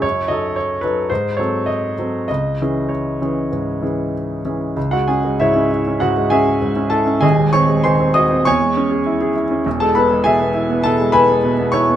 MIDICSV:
0, 0, Header, 1, 2, 480
1, 0, Start_track
1, 0, Key_signature, 4, "minor"
1, 0, Tempo, 531915
1, 30, Time_signature, 4, 2, 24, 8
1, 990, Tempo, 573066
1, 1470, Tempo, 617284
1, 6750, Tempo, 594059
1, 9579, End_track
2, 0, Start_track
2, 0, Title_t, "Grand piano"
2, 0, Program_c, 0, 0
2, 0, Control_c, 0, 64, 127
2, 0, Note_on_c, 0, 42, 42
2, 18, Note_on_c, 0, 73, 69
2, 47, Control_c, 0, 64, 0
2, 166, Control_c, 0, 64, 127
2, 245, Note_off_c, 0, 42, 0
2, 254, Note_on_c, 0, 75, 60
2, 262, Note_off_c, 0, 73, 0
2, 270, Note_on_c, 0, 54, 31
2, 271, Note_on_c, 0, 63, 30
2, 281, Note_on_c, 0, 69, 36
2, 498, Note_off_c, 0, 75, 0
2, 506, Note_on_c, 0, 73, 54
2, 709, Note_off_c, 0, 54, 0
2, 709, Note_off_c, 0, 63, 0
2, 714, Note_off_c, 0, 69, 0
2, 734, Note_on_c, 0, 71, 55
2, 745, Note_off_c, 0, 73, 0
2, 755, Note_on_c, 0, 54, 27
2, 757, Note_on_c, 0, 69, 30
2, 759, Note_on_c, 0, 63, 28
2, 971, Note_off_c, 0, 54, 0
2, 972, Note_off_c, 0, 69, 0
2, 973, Note_off_c, 0, 63, 0
2, 984, Note_off_c, 0, 71, 0
2, 989, Note_on_c, 0, 72, 55
2, 1004, Note_on_c, 0, 44, 39
2, 1006, Control_c, 0, 64, 0
2, 1127, Control_c, 0, 64, 127
2, 1216, Note_on_c, 0, 73, 54
2, 1225, Note_off_c, 0, 72, 0
2, 1226, Note_off_c, 0, 44, 0
2, 1229, Note_on_c, 0, 54, 30
2, 1236, Note_on_c, 0, 60, 29
2, 1238, Note_on_c, 0, 69, 33
2, 1462, Note_on_c, 0, 75, 55
2, 1465, Note_off_c, 0, 73, 0
2, 1675, Note_off_c, 0, 54, 0
2, 1678, Note_off_c, 0, 60, 0
2, 1679, Note_off_c, 0, 69, 0
2, 1712, Note_on_c, 0, 54, 23
2, 1721, Note_on_c, 0, 60, 26
2, 1722, Note_on_c, 0, 69, 24
2, 1926, Note_off_c, 0, 54, 0
2, 1931, Note_off_c, 0, 60, 0
2, 1931, Note_off_c, 0, 69, 0
2, 1932, Note_off_c, 0, 75, 0
2, 1944, Note_on_c, 0, 75, 59
2, 1962, Note_on_c, 0, 37, 38
2, 1964, Control_c, 0, 64, 0
2, 2137, Control_c, 0, 64, 127
2, 2190, Note_off_c, 0, 37, 0
2, 2204, Note_on_c, 0, 52, 27
2, 2207, Note_on_c, 0, 61, 24
2, 2207, Note_on_c, 0, 68, 25
2, 2416, Note_on_c, 0, 73, 40
2, 2426, Note_off_c, 0, 75, 0
2, 2641, Note_off_c, 0, 52, 0
2, 2642, Note_off_c, 0, 61, 0
2, 2642, Note_off_c, 0, 68, 0
2, 2670, Note_on_c, 0, 52, 27
2, 2674, Note_on_c, 0, 61, 24
2, 2675, Note_on_c, 0, 68, 28
2, 2882, Note_off_c, 0, 52, 0
2, 2884, Note_off_c, 0, 61, 0
2, 2885, Note_off_c, 0, 68, 0
2, 2908, Note_on_c, 0, 44, 31
2, 3138, Note_off_c, 0, 44, 0
2, 3141, Note_on_c, 0, 52, 28
2, 3145, Note_on_c, 0, 61, 25
2, 3150, Note_on_c, 0, 68, 28
2, 3380, Note_off_c, 0, 73, 0
2, 3596, Note_off_c, 0, 52, 0
2, 3598, Note_off_c, 0, 61, 0
2, 3600, Note_off_c, 0, 68, 0
2, 3632, Note_on_c, 0, 52, 22
2, 3634, Note_on_c, 0, 61, 22
2, 3634, Note_on_c, 0, 68, 24
2, 3850, Note_off_c, 0, 52, 0
2, 3851, Note_off_c, 0, 61, 0
2, 3851, Note_off_c, 0, 68, 0
2, 3876, Note_on_c, 0, 37, 43
2, 3887, Control_c, 0, 64, 0
2, 3991, Note_on_c, 0, 78, 65
2, 4003, Note_on_c, 0, 56, 38
2, 4003, Note_on_c, 0, 66, 48
2, 4015, Control_c, 0, 64, 127
2, 4115, Note_off_c, 0, 66, 0
2, 4117, Note_off_c, 0, 78, 0
2, 4118, Note_on_c, 0, 80, 52
2, 4123, Note_on_c, 0, 68, 41
2, 4125, Note_on_c, 0, 61, 34
2, 4198, Note_off_c, 0, 56, 0
2, 4250, Note_on_c, 0, 56, 37
2, 4320, Note_off_c, 0, 61, 0
2, 4352, Note_off_c, 0, 68, 0
2, 4366, Note_off_c, 0, 80, 0
2, 4367, Note_on_c, 0, 76, 62
2, 4376, Note_on_c, 0, 64, 50
2, 4376, Note_on_c, 0, 73, 54
2, 4381, Note_on_c, 0, 44, 39
2, 4444, Note_off_c, 0, 56, 0
2, 4491, Note_on_c, 0, 61, 39
2, 4568, Note_off_c, 0, 44, 0
2, 4606, Note_off_c, 0, 64, 0
2, 4617, Note_on_c, 0, 64, 35
2, 4681, Note_off_c, 0, 61, 0
2, 4739, Note_on_c, 0, 61, 36
2, 4803, Note_off_c, 0, 64, 0
2, 4818, Note_off_c, 0, 37, 0
2, 4819, Note_off_c, 0, 73, 0
2, 4837, Note_on_c, 0, 78, 67
2, 4845, Note_on_c, 0, 66, 55
2, 4846, Note_off_c, 0, 76, 0
2, 4851, Note_on_c, 0, 44, 40
2, 4922, Note_off_c, 0, 61, 0
2, 4971, Note_on_c, 0, 56, 32
2, 5038, Note_off_c, 0, 44, 0
2, 5066, Note_off_c, 0, 66, 0
2, 5071, Note_on_c, 0, 80, 73
2, 5078, Note_off_c, 0, 78, 0
2, 5080, Note_on_c, 0, 68, 55
2, 5083, Note_on_c, 0, 76, 60
2, 5086, Note_on_c, 0, 61, 43
2, 5157, Note_off_c, 0, 56, 0
2, 5206, Note_on_c, 0, 56, 40
2, 5274, Note_off_c, 0, 61, 0
2, 5317, Note_on_c, 0, 44, 36
2, 5393, Note_off_c, 0, 56, 0
2, 5430, Note_on_c, 0, 61, 40
2, 5508, Note_off_c, 0, 44, 0
2, 5524, Note_off_c, 0, 68, 0
2, 5525, Note_off_c, 0, 76, 0
2, 5535, Note_on_c, 0, 81, 71
2, 5541, Note_on_c, 0, 69, 53
2, 5546, Note_on_c, 0, 64, 41
2, 5551, Note_off_c, 0, 80, 0
2, 5624, Note_off_c, 0, 61, 0
2, 5665, Note_on_c, 0, 61, 37
2, 5740, Note_off_c, 0, 64, 0
2, 5767, Note_off_c, 0, 69, 0
2, 5775, Note_on_c, 0, 80, 74
2, 5780, Note_on_c, 0, 27, 45
2, 5781, Note_off_c, 0, 81, 0
2, 5787, Note_on_c, 0, 68, 60
2, 5788, Note_off_c, 0, 61, 0
2, 5788, Note_on_c, 0, 75, 55
2, 5790, Note_on_c, 0, 39, 54
2, 5808, Control_c, 0, 64, 0
2, 5921, Note_on_c, 0, 56, 42
2, 5957, Control_c, 0, 64, 127
2, 6009, Note_off_c, 0, 68, 0
2, 6010, Note_off_c, 0, 75, 0
2, 6020, Note_off_c, 0, 80, 0
2, 6024, Note_on_c, 0, 85, 87
2, 6030, Note_on_c, 0, 73, 58
2, 6033, Note_on_c, 0, 60, 43
2, 6105, Note_off_c, 0, 56, 0
2, 6151, Note_on_c, 0, 56, 36
2, 6223, Note_off_c, 0, 60, 0
2, 6253, Note_off_c, 0, 73, 0
2, 6264, Note_on_c, 0, 84, 65
2, 6267, Note_off_c, 0, 85, 0
2, 6272, Note_on_c, 0, 72, 45
2, 6272, Note_on_c, 0, 80, 49
2, 6275, Note_on_c, 0, 51, 40
2, 6343, Note_off_c, 0, 56, 0
2, 6388, Note_on_c, 0, 60, 42
2, 6465, Note_off_c, 0, 51, 0
2, 6495, Note_off_c, 0, 72, 0
2, 6495, Note_off_c, 0, 80, 0
2, 6501, Note_on_c, 0, 87, 83
2, 6508, Note_off_c, 0, 84, 0
2, 6509, Note_on_c, 0, 75, 62
2, 6513, Note_on_c, 0, 66, 39
2, 6582, Note_off_c, 0, 60, 0
2, 6631, Note_on_c, 0, 60, 41
2, 6703, Note_off_c, 0, 66, 0
2, 6714, Note_off_c, 0, 27, 0
2, 6719, Note_off_c, 0, 39, 0
2, 6732, Note_off_c, 0, 75, 0
2, 6744, Note_on_c, 0, 85, 92
2, 6745, Note_off_c, 0, 87, 0
2, 6750, Note_off_c, 0, 60, 0
2, 6755, Note_on_c, 0, 80, 62
2, 6760, Note_on_c, 0, 73, 66
2, 6763, Note_on_c, 0, 40, 57
2, 6765, Control_c, 0, 64, 0
2, 6874, Note_on_c, 0, 56, 35
2, 6940, Control_c, 0, 64, 127
2, 7000, Note_on_c, 0, 61, 44
2, 7067, Note_off_c, 0, 56, 0
2, 7114, Note_on_c, 0, 68, 42
2, 7188, Note_off_c, 0, 61, 0
2, 7236, Note_on_c, 0, 64, 46
2, 7303, Note_off_c, 0, 68, 0
2, 7355, Note_on_c, 0, 68, 48
2, 7423, Note_off_c, 0, 64, 0
2, 7440, Note_off_c, 0, 80, 0
2, 7442, Note_off_c, 0, 73, 0
2, 7466, Note_off_c, 0, 85, 0
2, 7475, Note_on_c, 0, 64, 45
2, 7543, Note_off_c, 0, 68, 0
2, 7598, Note_on_c, 0, 61, 41
2, 7666, Note_off_c, 0, 64, 0
2, 7690, Note_off_c, 0, 40, 0
2, 7716, Note_off_c, 0, 61, 0
2, 7719, Note_on_c, 0, 28, 52
2, 7722, Note_on_c, 0, 40, 58
2, 7730, Control_c, 0, 64, 0
2, 7834, Note_on_c, 0, 81, 77
2, 7842, Note_on_c, 0, 56, 43
2, 7842, Note_on_c, 0, 69, 60
2, 7852, Control_c, 0, 64, 127
2, 7952, Note_off_c, 0, 69, 0
2, 7953, Note_on_c, 0, 83, 65
2, 7955, Note_off_c, 0, 81, 0
2, 7960, Note_on_c, 0, 71, 53
2, 7962, Note_on_c, 0, 59, 47
2, 8032, Note_off_c, 0, 56, 0
2, 8087, Note_on_c, 0, 56, 47
2, 8152, Note_off_c, 0, 59, 0
2, 8182, Note_off_c, 0, 71, 0
2, 8186, Note_on_c, 0, 80, 81
2, 8195, Note_off_c, 0, 83, 0
2, 8198, Note_on_c, 0, 68, 55
2, 8200, Note_on_c, 0, 76, 61
2, 8204, Note_on_c, 0, 47, 44
2, 8274, Note_off_c, 0, 56, 0
2, 8325, Note_on_c, 0, 59, 44
2, 8393, Note_off_c, 0, 47, 0
2, 8434, Note_on_c, 0, 64, 43
2, 8515, Note_off_c, 0, 59, 0
2, 8558, Note_on_c, 0, 59, 53
2, 8630, Note_off_c, 0, 64, 0
2, 8649, Note_off_c, 0, 68, 0
2, 8651, Note_off_c, 0, 76, 0
2, 8656, Note_off_c, 0, 28, 0
2, 8657, Note_off_c, 0, 40, 0
2, 8669, Note_on_c, 0, 81, 88
2, 8676, Note_off_c, 0, 80, 0
2, 8684, Note_on_c, 0, 69, 67
2, 8686, Note_on_c, 0, 47, 48
2, 8752, Note_off_c, 0, 59, 0
2, 8803, Note_on_c, 0, 56, 45
2, 8876, Note_off_c, 0, 47, 0
2, 8901, Note_on_c, 0, 83, 86
2, 8906, Note_off_c, 0, 69, 0
2, 8908, Note_on_c, 0, 71, 69
2, 8909, Note_on_c, 0, 80, 70
2, 8915, Note_off_c, 0, 81, 0
2, 8918, Note_on_c, 0, 59, 49
2, 8993, Note_off_c, 0, 56, 0
2, 9045, Note_on_c, 0, 56, 44
2, 9109, Note_off_c, 0, 59, 0
2, 9155, Note_on_c, 0, 47, 54
2, 9231, Note_off_c, 0, 56, 0
2, 9276, Note_on_c, 0, 59, 50
2, 9345, Note_off_c, 0, 47, 0
2, 9354, Note_off_c, 0, 71, 0
2, 9355, Note_off_c, 0, 80, 0
2, 9381, Note_on_c, 0, 85, 86
2, 9383, Note_off_c, 0, 83, 0
2, 9395, Note_on_c, 0, 73, 65
2, 9400, Note_on_c, 0, 64, 46
2, 9464, Note_off_c, 0, 59, 0
2, 9515, Note_on_c, 0, 59, 49
2, 9579, Note_off_c, 0, 59, 0
2, 9579, Note_off_c, 0, 64, 0
2, 9579, Note_off_c, 0, 73, 0
2, 9579, Note_off_c, 0, 85, 0
2, 9579, End_track
0, 0, End_of_file